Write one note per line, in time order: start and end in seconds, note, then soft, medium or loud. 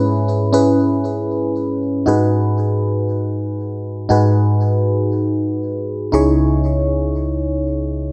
0.00 1.77 G#2 medium
0.00 0.38 C#4 medium
0.00 0.38 E4 medium
0.00 0.39 G#4 medium
0.00 0.39 B4 loud
0.53 1.35 C#4 medium
0.53 1.35 E4 medium
0.53 1.35 G#4 medium
0.53 1.35 B4 medium
2.06 4.06 G#2 medium
2.06 4.06 D#4 medium
2.06 4.06 F#4 medium
2.06 4.07 G#4 medium
2.06 4.07 B4 medium
4.09 6.09 G#2 medium
4.09 6.09 D#4 medium
4.09 6.09 F#4 medium
4.09 6.10 G#4 medium
4.09 6.10 B4 medium
6.12 8.12 C#2 medium
6.12 8.12 C#3 medium
6.12 8.12 D#4 medium
6.12 8.12 E4 medium
6.12 8.12 G#4 medium
6.12 8.12 C#5 medium